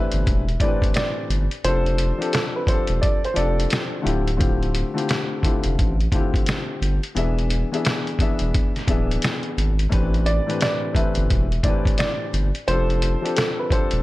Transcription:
Already playing: A2 E3 C4 D4 G4 B4 E5
0.12 G1, closed hi-hat
0.27 E1, kick, closed hi-hat
0.49 closed hi-hat
0.60 A2 E3 C4 D4 G4 B4 D5, kick, closed hi-hat
0.82 kick, closed hi-hat
0.94 D5, snare, closed hi-hat
1.30 G1, closed hi-hat
1.51 closed hi-hat
1.64 F1 F3 C4 D4 G4 A4 C5, closed hi-hat
1.86 closed hi-hat
1.98 closed hi-hat
2.18 F3 C4 D4 G4 A4, closed hi-hat
2.33 A4, snare, closed hi-hat
2.56 B4
2.66 F3 C4 D4 G4 A4 C5, kick, closed hi-hat
2.87 E1, closed hi-hat
3.02 D5, kick, closed hi-hat
3.25 C5, closed hi-hat
3.34 F1 F3 C4 D4 G4 A4 D5, closed hi-hat
3.60 closed hi-hat
3.70 snare, closed hi-hat
4.02 D1 D3 A3 C4 E4 F4 G4
4.07 closed hi-hat
4.28 closed hi-hat
4.37 D3 A3 C4 E4 F4 G4, kick, closed hi-hat
4.63 closed hi-hat
4.75 closed hi-hat
4.94 D3 A3 C4 E4 F4 G4
4.98 closed hi-hat
5.09 snare, closed hi-hat
5.42 D3 A3 C4 E4 F4 G4, kick, closed hi-hat
5.64 F1, closed hi-hat
5.79 A1, kick, closed hi-hat
6.01 closed hi-hat
6.11 D3 A3 C4 E4 F4 G4, kick, closed hi-hat
6.34 kick, closed hi-hat
6.46 snare, closed hi-hat
6.81 G1, closed hi-hat
7.03 closed hi-hat
7.15 E1 E3 B3 D4 G#4 E5, closed hi-hat
7.39 closed hi-hat
7.50 closed hi-hat
7.71 E3 B3 D4 G#4 E5, closed hi-hat
7.85 snare, closed hi-hat
8.07 closed hi-hat
8.19 E3 B3 D4 G#4 E5, kick, closed hi-hat
8.39 E1, closed hi-hat
8.54 kick, closed hi-hat
8.76 snare, closed hi-hat
8.87 D1 E3 B3 D4 G#4 E5, kick, closed hi-hat
9.11 closed hi-hat
9.22 snare, closed hi-hat
9.43 closed hi-hat
9.57 G#1, closed hi-hat
9.79 closed hi-hat
9.89 A1 A2 E3 C4 D4 G4 B4, kick, closed hi-hat
10.14 closed hi-hat
10.26 D5, closed hi-hat
10.47 A2 E3 C4 D4 G4 B4, closed hi-hat
10.61 D5, snare, closed hi-hat
10.93 A2 E3 C4 D4 G4 B4 E5, kick, closed hi-hat
11.15 G1, closed hi-hat
11.30 E1, kick, closed hi-hat
11.52 closed hi-hat
11.63 A2 E3 C4 D4 G4 B4 D5, kick, closed hi-hat
11.85 kick, closed hi-hat
11.98 D5, snare, closed hi-hat
12.33 G1, closed hi-hat
12.55 closed hi-hat
12.68 F1 F3 C4 D4 G4 A4 C5, closed hi-hat
12.90 closed hi-hat
13.02 closed hi-hat
13.22 F3 C4 D4 G4 A4, closed hi-hat
13.37 A4, snare, closed hi-hat
13.59 B4
13.70 F3 C4 D4 G4 A4 C5, kick, closed hi-hat
13.91 E1, closed hi-hat

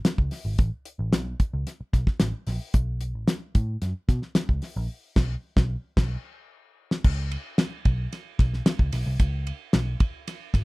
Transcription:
0.05 muted picked electric bass stroke, snare, closed hi-hat
0.18 C#2, kick
0.31 snare, open hi-hat
0.45 G#1
0.58 A1, kick, closed hi-hat
0.85 closed hi-hat
0.99 A1
1.13 B1, snare, closed hi-hat
1.40 kick, closed hi-hat
1.53 C#2
1.67 snare, closed hi-hat
1.81 muted picked electric bass stroke
1.93 B1, kick, snare, closed hi-hat
2.07 kick, snare
2.20 A1, snare, closed hi-hat
2.47 A#1, snare, open hi-hat
2.74 B1, kick, closed hi-hat
3.01 closed hi-hat
3.15 A1
3.28 snare, closed hi-hat
3.55 A2, kick, closed hi-hat
3.82 F#2, snare, closed hi-hat
4.08 B2, kick, snare, closed hi-hat
4.22 snare
4.35 muted picked electric bass stroke, snare, closed hi-hat
4.49 C#2, kick
4.62 snare, open hi-hat
4.76 A#1
5.16 B1, kick, snare, crash
5.57 B1, kick, snare
5.97 B1, kick, snare, crash
6.91 snare
7.04 C#2, kick, crash
7.31 ride bell
7.58 snare, ride bell
7.85 B1, kick, ride bell
8.13 snare, ride bell
8.39 B1, kick, snare, ride bell
8.54 snare
8.66 snare, ride bell
8.79 C#2, kick
8.92 B1, snare, open hi-hat, ride bell
9.06 C2
9.20 C#2, kick, hi-hat pedal, ride bell
9.47 ride bell
9.73 B1, snare, ride bell
10.00 kick, ride bell
10.28 snare, ride bell
10.54 G#1, kick, snare, ride bell

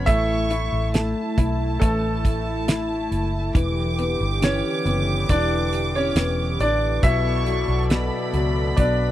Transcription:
0.06 A1 A3 E4 E5 C#6, kick, closed hi-hat
0.50 E4, closed hi-hat
0.72 A1
0.94 A3 A5, snare, closed hi-hat
1.38 B1 E4, kick, closed hi-hat
1.80 A1 A3 A4, kick, closed hi-hat
2.25 kick, closed hi-hat
2.68 E4, snare, closed hi-hat
3.11 F#1, closed hi-hat
3.54 E1 D3 E3 G4 D6, kick, closed hi-hat
3.99 B3, closed hi-hat
4.21 G1
4.42 E3 C#4 C#5, snare, closed hi-hat
4.85 F#1 B3, closed hi-hat
5.29 E1 E3 D4 D5, kick, closed hi-hat
5.73 closed hi-hat
5.95 C#4 C#5
6.15 E1 B3, snare, closed hi-hat
6.59 A1 D4 D5, closed hi-hat
7.03 B1 B2 B3 E4 A4 D5 E5 C#6, kick, closed hi-hat
7.46 F#3, closed hi-hat
7.68 B1
7.90 B2 B5, snare, closed hi-hat
8.33 C#2 F#3, closed hi-hat
8.77 B1 B2 D4 D5, kick, closed hi-hat

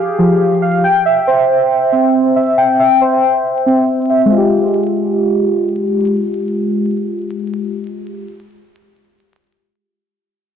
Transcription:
Already playing: G4 G#4 F5
0.19 F3
0.62 F5
0.84 G5
1.05 E5
1.27 C5
1.92 C4
2.36 E5
2.58 G5
2.79 E5
3.01 C5
3.66 C4
4.10 E5
4.26 G#3
4.32 F4
4.38 G4

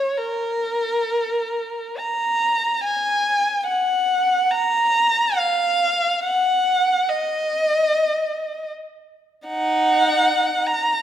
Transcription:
Already playing: C#5
0.18 A#4
1.98 A#5
2.84 G#5
3.67 F#5
4.50 A#5
5.38 F5
6.25 F#5
7.09 D#5
9.47 D#4 F#5
10.66 A#5

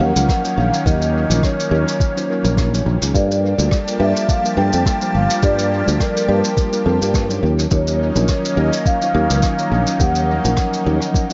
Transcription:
Already playing: D#3 A#3 C#4
0.00 D#2 F3 F#3 C#4 D#4 A#4 F#5
0.16 C#2, shaker
0.29 kick, cross-stick, shaker
0.43 F#3 C#4 D#4 F4 C#5, shaker
0.57 A#1 F5
0.74 shaker
0.84 D#2 F#3 C#4 D#4 F4 A#4 D#5, kick, shaker
1.02 shaker
1.29 A#1 F#3 C#4 D#4 F4 A#4, shaker
1.43 C#5, kick, cross-stick, shaker
1.60 shaker
1.71 D#2 F#3 C#4 D#4 F4 A#4
1.88 shaker
2.00 kick, shaker
2.15 F#3 C#4 D#4 F4 C5, shaker
2.28 F#3 C#4 D#4 F4 A#4
2.44 A#1, shaker
2.57 kick, cross-stick, shaker
2.72 F#3 C#4 D#4 F4 C#5, shaker
2.86 A#1
3.02 C#2, shaker
3.14 G2 F3 G3 A#3 D4 F4 G4 A4 D5 A5, kick, shaker
3.31 shaker
3.58 D2 G3 A#3 D4 F4 A4, shaker
3.71 kick, cross-stick, shaker
3.88 shaker
3.99 G2 G3 A#3 D4 F4 A4 E5
4.17 shaker
4.29 F5, kick, shaker
4.44 G3 A#3 D4 F4 A#4, shaker
4.57 G2 G3 A#3 D4 F4 A4 G5
4.73 F2, shaker
4.86 kick, cross-stick, shaker
5.00 G3 A#3 D4 F4 C5, shaker
5.15 G1 F5
5.30 shaker
5.42 G2 G3 A#3 F4 A4 D5, kick, shaker
5.59 shaker
5.86 D2 G3 A#3 D4 F4 A4, shaker
6.00 A#4, kick, cross-stick, shaker
6.17 shaker
6.27 G2 G3 A#3 D4 F4 A5
6.44 shaker
6.57 kick, shaker
6.71 G3 A#3 D4 F4 A#4, shaker
6.84 F2 G3 A#3 D4 F4 A5
7.02 G2, shaker
7.14 kick, cross-stick, shaker
7.29 F#3 C#4 D#4 F4 C#5, shaker
7.43 D#2 D#3 A#3 C#4 D#4
7.59 shaker
7.71 D#2 F#3 C#4 D#4 F4 A#4 C#5, kick, shaker
7.88 shaker
8.15 A#1 F#3 C#4 D#4 F4 A#4, shaker
8.28 kick, cross-stick, shaker
8.45 shaker
8.56 D#2 F#3 C#4 D#4 F4 A#4 D#5
8.73 shaker
8.86 F5, kick, shaker
9.01 F#3 C#4 D#4 F4 C5, shaker
9.13 D#2 F#3 C#4 D#4 F4 A#4
9.30 C#2, shaker
9.42 kick, cross-stick, shaker
9.58 F#3 C#4 D#4 F4 C#5, shaker
9.72 A#1
9.87 shaker
9.99 D#2 F3 F#3 C#4 D#4 A#4 F#5, kick, shaker
10.16 shaker
10.44 A#1 F3 F#3 C#4 D#4 A#4, shaker
10.57 kick, cross-stick, shaker
10.73 shaker
10.85 D#2 F3 F#3 C#4 D#4 A#4
11.02 shaker
11.14 kick, shaker
11.29 F#3 C#4

